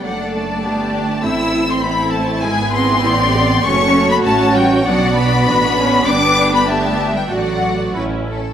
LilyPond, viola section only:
\new Staff \with { instrumentName = "Viola section" } { \time 2/4 \key a \dorian \tempo 4 = 99 << { d'4 d'4 | c'4 e'4~ | e'4 e'8 g'8 | \key g \lydian fis'2 |
d'4 d'4~ | d'2 | fis'4 e'8 r8 | } \\ { a4 b8 d'8 | c'2 | b2 | a4 cis'4 |
b4 d'8 cis'8 | b4 b4 | a4 cis'8 r8 | } >> }